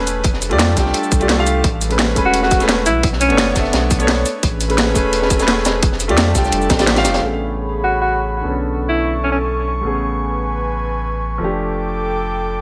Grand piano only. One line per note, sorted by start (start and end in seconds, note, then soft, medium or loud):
0.00 0.22 A3 medium
0.00 0.23 C#4 medium
0.00 0.24 G#4 medium
0.00 0.25 B4 loud
0.49 0.72 A3 medium
0.49 0.74 F4 medium
0.49 0.75 G4 medium
0.49 0.76 D5 loud
0.74 1.17 A3 medium
0.74 1.18 F4 medium
0.74 1.19 G4 medium
0.80 1.20 G5 medium
1.19 1.35 A3 medium
1.19 1.36 F4 medium
1.19 1.36 G4 medium
1.19 1.37 D5 loud
1.37 1.62 A3 medium
1.37 1.63 F4 medium
1.37 1.63 G4 medium
1.37 1.64 F5 loud
1.89 2.13 A3 medium
1.89 2.14 C#4 medium
1.89 2.15 G#4 medium
1.89 2.15 B4 medium
2.15 2.40 A3 medium
2.15 2.41 C#4 medium
2.15 2.41 G#4 medium
2.15 2.42 B4 loud
2.42 2.57 A3 medium
2.42 2.58 C#4 medium
2.42 2.59 G#4 medium
2.42 2.59 B4 medium
2.59 2.84 A3 loud
2.59 2.85 C#4 medium
2.59 2.85 G#4 medium
2.59 2.86 B4 loud
3.29 3.52 B3 loud
3.29 3.54 D4 medium
3.29 3.54 A4 medium
3.29 3.55 C#5 loud
3.53 3.96 B3 medium
3.53 3.98 D4 medium
3.53 3.98 A4 medium
3.59 4.00 E5 medium
3.99 4.24 B3 loud
3.99 4.25 D4 medium
3.99 4.25 A4 medium
3.99 4.26 C#5 loud
4.68 4.93 A3 medium
4.68 4.93 C#4 medium
4.68 4.94 G#4 medium
4.68 4.94 B4 medium
4.94 5.19 A3 loud
4.94 5.20 C#4 medium
4.94 5.20 G#4 medium
4.94 5.21 B4 loud
5.21 5.35 A3 medium
5.21 5.37 C#4 medium
5.21 5.38 G#4 medium
5.21 5.38 B4 medium
5.36 5.80 A3 loud
5.36 5.81 C#4 medium
5.36 5.82 G#4 medium
5.42 5.83 B4 loud
6.08 6.31 A3 loud
6.08 6.33 F4 medium
6.08 6.33 G4 medium
6.08 6.34 D5 loud
6.32 6.76 A3 medium
6.32 6.77 F4 medium
6.32 6.78 G4 medium
6.38 6.79 G5 medium
6.78 6.94 A3 medium
6.78 6.94 F4 medium
6.78 6.95 G4 medium
6.78 6.95 D5 loud
6.95 7.20 A3 medium
6.95 7.21 F4 medium
6.95 7.22 G4 medium
6.95 7.22 F5 loud
7.20 8.41 C#3 medium
7.20 8.42 A3 medium
7.20 8.42 B3 medium
7.25 8.44 G#4 medium
8.42 9.81 D3 medium
8.42 9.82 B3 medium
8.42 9.83 C#4 medium
8.48 9.84 A4 medium
9.81 11.38 C#3 medium
9.81 11.38 A3 medium
9.81 11.39 B3 medium
9.87 11.40 G#4 medium
11.38 12.61 F3 medium
11.38 12.61 A3 medium
11.42 12.61 D4 medium
11.42 12.61 G4 medium